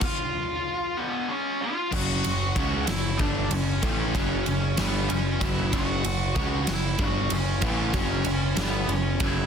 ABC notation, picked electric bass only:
X:1
M:6/8
L:1/8
Q:3/8=63
K:F#m
V:1 name="Picked electric bass" clef=bass
z6 | F,,, F,,, C,, F,,, =G,,, F,,, | A,,, F,,, F,,, =G,,, F,,, F,,, | F,,, F,,, C,, F,,, =G,,, F,,, |
A,,, F,,, F,,, =G,,, F,,, F,,, |]